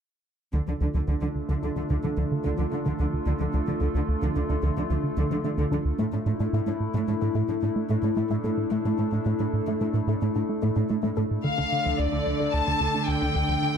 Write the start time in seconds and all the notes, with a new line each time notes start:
0.53 D2 D3 A3 D4 F4 A4
0.68 D2 D3 F3
0.81 D2 D3 F3
0.94 D2 D3 F3
1.08 D2 D3
1.21 D2 D3 F3
1.35 D2
1.49 D2 D3
1.63 D2 D3 D4
1.76 D2 D3 D4
1.90 D2 D3
2.03 D2 D3 F3
2.17 D2 D3 F3
2.32 D3
2.44 D2 D3
2.58 D2 D3 F3
2.72 D3 A3
2.85 D2 D3
2.99 D2 D3 D4
3.13 D2
3.26 D2 D3
3.40 D2 D3 F3
3.54 D2 D3 F3
3.67 D2 D3 F3
3.81 D2 D3
3.95 D2 D3 F3
4.09 D2
4.22 D2 D3
4.36 D2 D3 D4
4.49 D2 D3 D4
4.63 D2 D3
4.77 D2 D3 F3
4.90 D2 D3 F3
5.04 D3
5.17 D2 D3
5.30 D2 D3 F3
5.44 D3 A3
5.58 D2 D3
5.71 D2 D3 D4
5.85 D2
5.99 A2 A3 D4 E4 A4
6.13 A2 D4
6.26 A2 D4
6.40 A2 D4
6.53 A2 A3
6.66 A2 D4
6.80 A2
6.94 A2 A3
7.08 A2 A4
7.21 A2 A4
7.35 A2 A3
7.49 A2 D4
7.62 A2 D4
7.76 A3
7.89 A2 A3
8.02 A2 D4
8.17 A2 A3 E4
8.30 A2 A3
8.44 A2 A4
8.57 A2
8.71 A2 A3
8.85 A2 D4
8.99 A2 D4
9.12 A2 D4
9.26 A2 A3
9.40 A2 D4
9.54 A2
9.67 A2 A3
9.81 A2 A4
9.94 A2 A4
10.07 A2 A3
10.22 A2 D4
10.35 A2 D4
10.49 A3
10.62 A2 A3
10.76 A2 D4
10.89 A2 A3 E4
11.03 A2 A3
11.17 A2 A4
11.31 A2
11.44 D2 D3 A3 D4 A4 F5
11.58 D2 D4
11.72 D3
11.86 D2 F3
11.99 D2 D3 D5
12.13 D2 D4
12.26 D2 F3
12.40 D2 D3
12.54 D2 D4 A5
12.67 D2 D4
12.81 D2 D3
12.95 D3 A3
13.08 D2 G5
13.22 D2 D4
13.35 D2 D3
13.49 D2 F3
13.62 D3